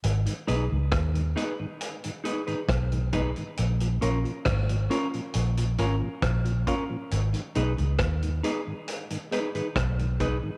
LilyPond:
<<
  \new Staff \with { instrumentName = "Clean electric guitar" } { \time 4/4 \key gis \dorian \tempo 4 = 68 r8 <dis' gis' b'>16 r8. <dis' gis' b'>16 r8. <dis' gis' b'>16 <dis' gis' b'>16 r8 <dis' gis' b'>16 r16 | r8 <cis' eis' ais'>16 r8. <cis' eis' ais'>16 r8. <cis' eis' ais'>16 r8. <cis' eis' ais'>16 r16 | r8 <dis' gis' b'>16 r8. <dis' gis' b'>16 r8. <dis' gis' b'>16 <dis' gis' b'>16 r8 <dis' gis' b'>16 r16 | }
  \new Staff \with { instrumentName = "Tonewheel organ" } { \clef bass \time 4/4 \key gis \dorian << { r8 <gis b dis'>8 r8 <gis b dis'>8 r8 <gis b dis'>8 r8 <gis b dis'>8 | r8 <ais cis' eis'>8 r8 <ais cis' eis'>8 r8 <ais cis' eis'>8 r8 <ais cis' eis'>8 | r8 <gis b dis'>8 r8 <gis b dis'>8 r8 <gis b dis'>8 r8 <gis b dis'>8 | } \\ { r16 <gis, dis>16 r16 <gis, dis>16 r16 <gis, dis>16 r16 <gis, dis>16 r16 <gis, dis>16 r16 <gis, dis>16 r16 <gis, dis>16 r16 <gis, dis>16 | r16 <ais, eis>16 r16 <ais, eis>16 r16 <ais, eis>16 r16 <ais, eis>16 r16 <ais, eis>16 r16 <ais, eis>16 r16 <ais, eis>16 r16 <ais, eis>16 | r16 <gis, dis>16 r16 <gis, dis>16 r16 <gis, dis>16 r16 <gis, dis>16 r16 <gis, dis>16 r16 <gis, dis>16 r16 <gis, dis>16 r16 <gis, dis>16 | } >> }
  \new Staff \with { instrumentName = "Fingered electric bass" } { \clef bass \time 4/4 \key gis \dorian gis,,16 r16 b,,16 cis,16 dis,8 r4. b,,8. r16 | ais,,8 ais,,16 r16 gis,,8 r8 ais,,8 gis,,16 r16 ais,,8 r8 | gis,,16 r16 b,,16 cis,16 dis,8 r4. b,,8. r16 | }
  \new DrumStaff \with { instrumentName = "Drums" } \drummode { \time 4/4 hh16 hh16 hh8 <hh bd ss>16 hh16 hh8 hh16 hh16 hh16 hh16 <hh bd ss>16 hh16 <hh bd>16 hh16 | hh16 hh16 hh16 hh16 <hh bd ss>16 hh16 hh16 hh16 hh16 hh16 hh8 <hh bd ss>16 hh16 <hh bd>8 | hh16 hh16 hh16 hh16 <hh bd ss>16 hh16 hh8 hh16 hh16 hh16 hh16 <hh bd ss>16 hh16 <hh bd>8 | }
>>